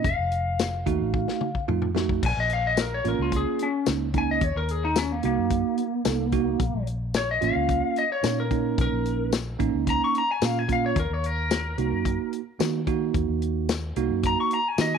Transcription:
0.04 F1 F5, kick, closed hi-hat
0.18 F1
0.32 closed hi-hat
0.59 snare, closed hi-hat, tambourine
0.86 D#2 A3 D#4 F#4, kick, closed hi-hat
1.00 A1
1.14 kick
1.28 snare
1.41 mid tom
1.55 kick
1.68 F2 A3 D#4 F4, mid tom
1.82 mid tom
1.95 A3 D#4 F#4, snare
2.09 kick
2.23 A#1 G#5, kick, crash
2.37 A#1 D#5
2.50 F5, closed hi-hat
2.67 D#5
2.77 snare, closed hi-hat, tambourine
2.81 A#4
2.94 C#5
3.04 A1 A#3 C#4 F4, closed hi-hat
3.08 A#4
3.19 C#2 F4
3.32 kick, closed hi-hat
3.36 G#4
3.59 C#4, closed hi-hat
3.86 C#2 A#3 C#4 D#4, snare, closed hi-hat, tambourine
4.14 A#3 C#4 D#4, kick, closed hi-hat
4.18 G#5
4.31 D#5
4.41 D#2 C#5, kick, closed hi-hat
4.56 D#2 A#4
4.69 G#4, closed hi-hat
4.85 D#4
4.96 C#4, snare, closed hi-hat, tambourine
5.12 A#3
5.23 C2 A#3 D#4 F#4, closed hi-hat
5.38 F#2
5.50 kick, closed hi-hat
5.78 closed hi-hat
6.05 C2 A#3 D#4 A4, snare, closed hi-hat, tambourine
6.32 A#3 D#4 F#4, kick, closed hi-hat
6.60 A#1, kick, closed hi-hat
6.74 A#1
6.87 closed hi-hat
7.14 C#5, snare, closed hi-hat, tambourine
7.31 D#5
7.41 A1 A#3 C#4 F4 F5, closed hi-hat
7.55 C#2
7.69 kick, closed hi-hat
7.96 D#5, closed hi-hat
8.12 C#5
8.23 A#2 A#3 C#4 D#4, snare, closed hi-hat, tambourine
8.40 A#4
8.51 A#3 C#4 D#4, kick, closed hi-hat
8.78 A#1 A#4, kick, closed hi-hat
8.92 A#1
9.05 closed hi-hat
9.32 snare, closed hi-hat, tambourine
9.59 A1 A#3 C#4 D#4, kick, closed hi-hat
9.74 C#2
9.87 A#5, kick, closed hi-hat
10.04 C#6
10.15 A#5, closed hi-hat
10.31 G#5
10.42 A#2 A#3 C#4 F4 F5, snare, closed hi-hat, tambourine
10.59 G#5
10.68 A#3 C#4 F4, kick, closed hi-hat
10.73 F5
10.86 C#5
10.96 D#2 A#4, kick, closed hi-hat
11.10 D#2 C#5
11.24 A#4, closed hi-hat
11.51 snare, closed hi-hat, tambourine
11.78 C2 A#3 D#4 F#4, closed hi-hat
11.92 F#2
12.05 kick, closed hi-hat
12.33 closed hi-hat
12.60 D#3 A#3 D#4 F#4, snare, closed hi-hat, tambourine
12.87 A#3 D#4 F#4, kick, closed hi-hat
13.14 D#2, kick, closed hi-hat
13.29 D#2
13.42 closed hi-hat
13.69 snare, closed hi-hat, tambourine
13.96 C2 A#3 D#4 F#4, closed hi-hat
14.10 F#2
14.23 A#5, kick, closed hi-hat
14.40 C#6
14.51 A#5, closed hi-hat
14.68 G#5
14.78 D#3 A#3 D#4 F#4 D#5, snare, closed hi-hat, tambourine
14.95 G#5

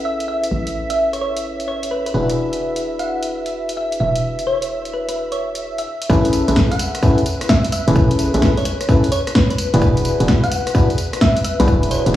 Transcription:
Already playing: A1 C#4 E4 G#4 A4 B4 E5
0.05 E5
0.20 closed hi-hat
0.28 E5
0.44 closed hi-hat
0.51 A1
0.67 closed hi-hat
0.90 E5, closed hi-hat
1.13 C#5, closed hi-hat
1.21 C#5
1.37 closed hi-hat
1.60 closed hi-hat
1.68 C#5
1.83 closed hi-hat
1.91 B4
2.06 B4, closed hi-hat
2.14 E1 D4 E4 F#4 G#4 B4
2.30 closed hi-hat
2.53 closed hi-hat
2.76 closed hi-hat
2.99 F#5, closed hi-hat
3.23 closed hi-hat
3.46 closed hi-hat
3.69 closed hi-hat
3.77 E5
3.92 closed hi-hat
4.00 E1 E5
4.16 closed hi-hat
4.39 closed hi-hat
4.47 C#5
4.62 closed hi-hat
4.85 closed hi-hat
4.93 B4
5.09 B4, closed hi-hat
5.32 C#5, closed hi-hat
5.55 closed hi-hat
5.78 E5, closed hi-hat
6.02 closed hi-hat
6.10 A1 C#4 E4 G#4 A4 B4, kick, tambourine
6.25 closed hi-hat, tambourine
6.33 open hi-hat, tambourine
6.48 A1 C#4 E4 G#4 A4 B4, closed hi-hat, tambourine
6.56 kick, snare, tambourine
6.71 F#5, closed hi-hat, tambourine
6.79 open hi-hat, tambourine
6.95 cross-stick, closed hi-hat, tambourine
7.03 C#4 E4 G#4 A4 B4, kick, tambourine
7.18 closed hi-hat, tambourine
7.26 open hi-hat, tambourine
7.41 cross-stick, closed hi-hat, tambourine
7.49 E5, kick, snare, tambourine
7.64 closed hi-hat, tambourine
7.72 E5, open hi-hat, tambourine
7.88 E1 C#4 E4 G#4 A4 B4, closed hi-hat, tambourine
7.96 A1, kick, tambourine
8.11 closed hi-hat, tambourine
8.19 open hi-hat, tambourine
8.34 A1 C#4 E4 G#4 A4 B4 E5, closed hi-hat, tambourine
8.42 kick, snare, tambourine
8.57 C#5, closed hi-hat, tambourine
8.65 C#5, open hi-hat, tambourine
8.81 cross-stick, closed hi-hat, tambourine
8.89 C#4 E4 G#4 A4 B4, kick, tambourine
9.04 closed hi-hat, tambourine
9.12 C#5, open hi-hat, tambourine
9.27 cross-stick, closed hi-hat, tambourine
9.35 B4, kick, snare, tambourine
9.50 B4, closed hi-hat, tambourine
9.58 open hi-hat, tambourine
9.74 E1 D4 E4 F#4 G#4 B4, closed hi-hat, tambourine
9.82 E1, kick, tambourine
9.97 closed hi-hat, tambourine
10.05 open hi-hat, tambourine
10.20 E1 D4 E4 F#4 G#4 B4, closed hi-hat, tambourine
10.28 kick, snare, tambourine
10.44 F#5, closed hi-hat, tambourine
10.52 open hi-hat, tambourine
10.67 cross-stick, closed hi-hat, tambourine
10.75 D4 E4 F#4 G#4 B4, kick, tambourine
10.90 closed hi-hat, tambourine
10.98 open hi-hat, tambourine
11.13 cross-stick, closed hi-hat, tambourine
11.21 E5, kick, snare, tambourine
11.37 closed hi-hat, tambourine
11.44 E5, open hi-hat, tambourine
11.60 B1 D4 E4 F#4 G#4 B4, closed hi-hat, tambourine
11.68 E1, kick, tambourine
11.83 closed hi-hat, tambourine
11.91 C#5, open hi-hat, tambourine
12.06 E1 D4 E4 F#4 G#4 B4, closed hi-hat, tambourine

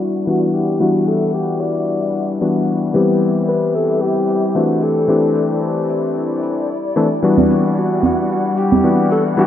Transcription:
Already playing: E3 G3 B3 D4 E4 F#4 D5 F#5
0.00 F#4, open hi-hat
0.27 E3 G3 B3 D4 F#4
0.54 G4, open hi-hat
0.80 E3 G3 B3 D4 F#4 E5
1.07 A4, open hi-hat
1.34 G4
1.61 D5, open hi-hat
2.14 open hi-hat
2.41 E3 G3 B3 D4 F#4
2.68 open hi-hat
2.94 E3 G3 B3 C4 G4 B4 E5
3.21 open hi-hat
3.49 B4
3.75 A4, open hi-hat
4.01 G4
4.29 open hi-hat
4.55 E3 A3 C4 D4 F#4 G4
4.82 E4 A4 D5, open hi-hat
5.08 E3 A3 C4 D4 G4
5.36 open hi-hat
5.89 open hi-hat
6.43 open hi-hat
6.96 E3 A3 C4 D4 A4, open hi-hat
7.22 E3 G3 B3 D4 F#4 F#5, maracas
7.38 high conga, maracas
7.50 open hi-hat, maracas
7.64 maracas
7.77 F#4, maracas
7.91 maracas
8.03 F#4, open hi-hat, high conga, maracas
8.18 maracas
8.30 F#4, maracas
8.45 maracas
8.57 G4, open hi-hat, maracas
8.71 high conga, maracas
8.83 E3 G3 B3 D4 F#4, maracas
8.98 maracas
9.11 A4, open hi-hat, maracas
9.25 maracas
9.37 E3 G3 B3 D4 F#4 G4 E5, maracas

